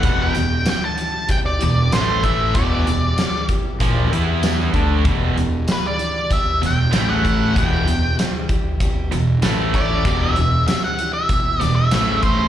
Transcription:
Already playing: lead electric guitar F#5
0.03 fingered electric bass E1, steel-string acoustic guitar E2 B2 E3 G3 E4 G4, overdriven electric guitar E2 B2 E3, kick, closed hi-hat
0.22 lead electric guitar G5
0.35 fingered electric bass E1, overdriven electric guitar E2 B2, steel-string acoustic guitar E3 G3 E4 G4, closed hi-hat
0.64 steel-string acoustic guitar E3 G3 E4 G4, snare, closed hi-hat, tambourine
0.70 lead electric guitar G5
0.84 lead electric guitar A5
0.98 steel-string acoustic guitar E3 G3 E4 G4, closed hi-hat
1.28 steel-string acoustic guitar E2 B2 E3 G3 E4 G4, lead electric guitar G5, kick, closed hi-hat
1.46 lead electric guitar D5
1.59 fingered electric bass E1, overdriven electric guitar E2 B2, steel-string acoustic guitar E3 G3 E4 G4, closed hi-hat
1.91 fingered electric bass A1, overdriven electric guitar A2 E3 A3, steel-string acoustic guitar E3 A3, lead electric guitar C5, snare, closed hi-hat, tambourine
2.23 steel-string acoustic guitar A3 E4 A4, lead electric guitar E5, kick, closed hi-hat
2.54 fingered electric bass E1, overdriven electric guitar E2 B2 E3, steel-string acoustic guitar E2 B2 E3 G3 E4 G4, lead electric guitar D5, kick, closed hi-hat
2.86 fingered electric bass E1, overdriven electric guitar E2 B2, steel-string acoustic guitar E3 G3 E4 G4, closed hi-hat
3.18 steel-string acoustic guitar E3 G3 E4 G4, snare, closed hi-hat, tambourine
3.49 steel-string acoustic guitar E3 G3 E4 G4, kick, closed hi-hat
3.80 fingered electric bass A#1, steel-string acoustic guitar E2 E3 G3 E4 G4, overdriven electric guitar A#2 F3 A#3, kick, closed hi-hat
4.11 fingered electric bass E2, overdriven electric guitar E3 B3 E4, steel-string acoustic guitar E3 G3 E4 G4, closed hi-hat
4.43 steel-string acoustic guitar E3 G3 E4 G4, snare, closed hi-hat, tambourine
4.74 fingered electric bass D2, overdriven electric guitar D3 A3 D4, steel-string acoustic guitar E3 G3 E4 G4, kick, closed hi-hat
5.04 fingered electric bass E1, overdriven electric guitar E2 B2 E3, steel-string acoustic guitar E2 B2 E3 G3 E4 G4, kick, closed hi-hat
5.36 fingered electric bass E1, overdriven electric guitar E2 B2, steel-string acoustic guitar E3 G3 E4 G4, closed hi-hat
5.67 steel-string acoustic guitar E3 G3 E4 G4, snare, closed hi-hat, tambourine
5.72 lead electric guitar B4
5.86 lead electric guitar D5
5.98 steel-string acoustic guitar E3 G3 E4 G4, closed hi-hat
6.30 steel-string acoustic guitar E2 B2 E3 G3 E4 G4, lead electric guitar E5, kick, closed hi-hat
6.61 fingered electric bass E1, overdriven electric guitar E2 B2, steel-string acoustic guitar E3 G3 E4 G4, snare, closed hi-hat
6.66 lead electric guitar G5
6.92 fingered electric bass A1, overdriven electric guitar A2 E3 A3, steel-string acoustic guitar E3 A3 E4 A4, snare, closed hi-hat, tambourine
7.10 lead electric guitar F#5
7.24 steel-string acoustic guitar A3 E4 A4, kick, closed hi-hat
7.55 fingered electric bass E1, steel-string acoustic guitar E2 B2 E3 G3 E4 G4, overdriven electric guitar E2 B2 E3, lead electric guitar G5, kick, closed hi-hat
7.87 fingered electric bass E1, overdriven electric guitar E2 B2, steel-string acoustic guitar E3 G3 E4 G4, closed hi-hat
8.18 steel-string acoustic guitar E3 G3 E4 G4, snare, closed hi-hat, tambourine
8.49 steel-string acoustic guitar E3 G3 E4 G4, kick, closed hi-hat
8.80 steel-string acoustic guitar E2 B2 E3 G3 E4 G4, kick, closed hi-hat
9.10 fingered electric bass E1, overdriven electric guitar E2 B2, steel-string acoustic guitar E3 G3 E4 G4, closed hi-hat
9.42 fingered electric bass A1, overdriven electric guitar A2 E3 A3, steel-string acoustic guitar E3 A3 E4 A4, snare, closed hi-hat, tambourine
9.73 steel-string acoustic guitar A3 E4 A4, lead electric guitar D5, kick, closed hi-hat
10.05 fingered electric bass E1, steel-string acoustic guitar E2 B2 E3 G3 E4 G4, overdriven electric guitar E2 B2 E3, kick, closed hi-hat
10.22 lead electric guitar E5
10.36 fingered electric bass E1, overdriven electric guitar E2 B2, steel-string acoustic guitar E3 G3 E4 G4, closed hi-hat
10.67 steel-string acoustic guitar E3 G3 E4 G4, lead electric guitar E5, snare, closed hi-hat, tambourine
10.84 lead electric guitar F#5
10.99 steel-string acoustic guitar E3 G3 E4 G4, closed hi-hat
11.13 lead electric guitar E5
11.29 steel-string acoustic guitar E2 B2 E3 G3 E4 G4, kick, closed hi-hat
11.61 fingered electric bass E1, overdriven electric guitar E2 B2, steel-string acoustic guitar E3 G3 E4 G4, lead electric guitar D5, snare, closed hi-hat
11.76 lead electric guitar E5
11.91 fingered electric bass A1, overdriven electric guitar A2 E3 A3, steel-string acoustic guitar E3 A3 E4 A4, snare, closed hi-hat, tambourine
12.23 steel-string acoustic guitar A3 E4 A4, lead electric guitar C5, kick, closed hi-hat

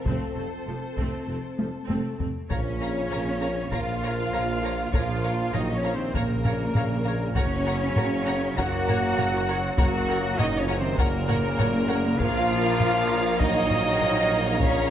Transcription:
Already playing: french horn section F3 C4
0.04 double bass section F1, tuba F1, cello section F2, viola section A3 C4, violin section A4 C5, taiko
0.36 double bass section F1, tuba F1, cello section F2, viola section A3 C4
0.67 double bass section F1, tuba F1, cello section F2, viola section F3 A3
0.97 double bass section F1, tuba F1, cello section F2, viola section A3 C4, taiko
1.27 double bass section F1, tuba F1, cello section F2, viola section A3 C4
1.58 tuba F1, double bass section F1, cello section F2, viola section F3 A3, taiko high
1.88 double bass section F1, tuba F1, cello section F2, viola section A3 C4, taiko high
2.19 tuba F1, double bass section F1, cello section F2, viola section A3 C4, taiko low
2.50 double bass section A#1, tuba A#1, trombone section C#3, french horn section F3, cello section C#4, viola section A#4 C#5, violin section C#5 F5 A#5, trumpet section C#5, taiko
2.81 viola section A#4 C#5, violin section F5 A#5
3.11 tuba A#1, double bass section A#1, viola section A#4 C#5, violin section F5 A#5
3.41 viola section A#4 C#5, violin section F5 A#5
3.72 tuba A#1, double bass section A#1, trombone section F3, french horn section A#3, cello section F4, viola section A#4 C#5, violin section F5 A#5, trumpet section F5, taiko
4.03 viola section A#4 C#5, violin section F5 A#5
4.33 double bass section A#1, tuba A#1, viola section A#4 C#5, violin section F5 A#5
4.63 viola section A#4 C#5, violin section F5 A#5
4.93 double bass section A#1, tuba A#1, trombone section F3, french horn section A#3, cello section F4, viola section A#4 C#5, trumpet section F5, violin section F5 A#5, taiko
5.23 viola section A#4 C#5, violin section F5 A#5
5.53 double bass section A#1, tuba A#1, trombone section D#3, french horn section F#3, cello section D#4, viola section A#4 C#5, violin section D#5 F5 A#5, trumpet section D#5, taiko low-mid
5.73 trombone section C#3, french horn section F3, cello section C#4, violin section C#5, trumpet section C#5
5.84 viola section A#4 C#5, violin section F5 A#5
5.93 trombone section C3, french horn section D#3, cello section C4, violin section C5, trumpet section C5
6.14 double bass section A#1, tuba A#1, trombone section A#2, french horn section C#3, cello section A#3, trumpet section A#4, violin section A#4 F5 A#5, viola section A#4 C#5, taiko
6.44 viola section A#4 C#5, violin section F5 A#5, taiko low-mid
6.74 double bass section A#1, tuba A#1, viola section A#4 C#5, violin section F5 A#5, taiko low-mid
7.04 viola section A#4 C#5, violin section F5 A#5
7.34 double bass section F#1, tuba F#1, trombone section C#3, french horn section F#3, cello section C#4, viola section A#4 C#5, trumpet section C#5, violin section C#5 F#5 A#5, taiko
7.66 viola section A#4 C#5, violin section F#5 A#5
7.96 double bass section F#1, tuba F#1, viola section A#4 C#5, violin section F#5 A#5, taiko low-mid
8.26 viola section A#4 C#5, violin section F#5 A#5
8.57 double bass section F#1, tuba F#1, trombone section F#3, french horn section A#3, cello section F#4, viola section A#4 C#5, violin section F#5 A#5, trumpet section F#5, taiko
8.87 viola section A#4 C#5, violin section F#5 A#5, taiko low-mid
9.17 tuba F#1, double bass section F#1, viola section A#4 C#5, violin section F#5 A#5, taiko low-mid
9.47 viola section A#4 C#5, violin section F#5 A#5
9.77 tuba F#1, double bass section F#1, trombone section F#3, french horn section A#3, cello section F#4, viola section A#4 C#5, violin section F#5 A#5, trumpet section F#5, taiko
10.08 viola section A#4 C#5, violin section F#5 A#5
10.37 tuba F#1, double bass section F#1, trombone section D#3, french horn section F#3, cello section D#4, viola section A#4 C#5, violin section D#5 F#5 A#5, trumpet section D#5, taiko low-mid
10.57 trombone section C#3, french horn section F3, cello section C#4, violin section C#5, trumpet section C#5
10.68 viola section A#4 C#5, violin section F#5 A#5
10.77 trombone section C3, french horn section D#3, cello section C4, violin section C5, trumpet section C5
10.97 double bass section F#1, tuba F#1, trombone section A#2, french horn section C#3, cello section A#3, violin section A#4 F#5 A#5, trumpet section A#4, viola section A#4 C#5, taiko
11.28 viola section A#4 C#5, violin section F#5 A#5, taiko low-mid
11.58 double bass section F#1, tuba F#1, viola section A#4 C#5, violin section F#5 A#5, taiko low-mid
11.88 viola section A#4 C#5, violin section F#5 A#5
12.19 double bass section A#1, tuba A#1, trombone section F3, french horn section A#3, cello section F4, viola section A#4 C#5, trumpet section F5, violin section F5 A#5, taiko
12.80 taiko low-mid
13.39 trombone section D#3, french horn section F#3, cello section D#4, violin section D#5, trumpet section D#5, taiko
13.70 taiko low-mid
14.01 taiko low-mid
14.59 trombone section C#3, french horn section F3, cello section C#4, violin section C#5, trumpet section C#5, taiko

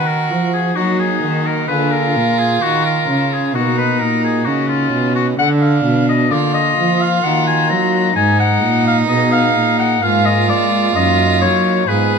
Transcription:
Already playing: pipe organ D#3, cello D#3, violin F#4
0.07 oboe A#4
0.30 cello F3, pipe organ F3
0.54 oboe G#4
0.75 cello F#3, pipe organ F#3 A#3 D#4 F#4, violin D#4, oboe F#4
0.99 oboe G#4
1.22 cello D#3, pipe organ D#3
1.46 oboe A#4
1.68 cello D3, pipe organ D3 A#3 F4 G#4, violin F4, oboe B4
1.92 oboe A#4
2.16 cello A#2, pipe organ A#2
2.38 oboe G#4
2.62 pipe organ D#3, cello D#3, oboe F#4
2.85 oboe A#4
3.07 pipe organ C#3, cello C#3
3.33 oboe G#4
3.53 pipe organ B2 A#3 D#4 F#4, cello B2, violin D#4, oboe F#4
3.78 oboe B4
3.98 pipe organ A#2, cello A#2, oboe A#4
4.24 oboe G#4
4.45 pipe organ C#3 A#3 D#4 F#4, cello C#3, violin C#4, oboe F#4
4.69 oboe F4
4.92 pipe organ B2, cello B2
5.16 oboe F#4
5.36 pipe organ D3, cello D3, violin D4, oboe F#5
5.62 oboe F5
5.84 pipe organ B2, cello B2
6.09 oboe D#5
6.30 pipe organ D3 A#3 F4, cello D3, violin F4, oboe D5
6.54 oboe D#5
6.76 pipe organ F3, cello F3
7.01 oboe F5
7.22 pipe organ D#3 A#3 D#4 F#4, cello D#3, oboe F#5
7.47 oboe G#5
7.69 pipe organ F#3, cello F#3, oboe A#5
8.15 pipe organ G#2 G#3, cello G#2, violin D#4, oboe G#5
8.40 oboe F#5
8.62 pipe organ A#2, cello A#2
8.87 oboe F5
9.08 pipe organ B2 B3 D#4 G#4, cello B2, oboe D#5
9.32 oboe F5
9.54 pipe organ A#2, cello A#2
9.79 oboe F#5
10.01 pipe organ G#2 G#3 A#3 F4 A#4, cello G#2, violin F4, oboe F5
10.26 oboe D#5
10.48 pipe organ G#3, cello G#3, oboe D5
10.94 pipe organ F#2 A#3 D#4 A#4, cello F#2, oboe D#5
11.40 pipe organ F#3, cello F#3, oboe C#5
11.87 pipe organ G#2 G#3 B3 D#4 F4, cello G#2, violin G#4, oboe B4

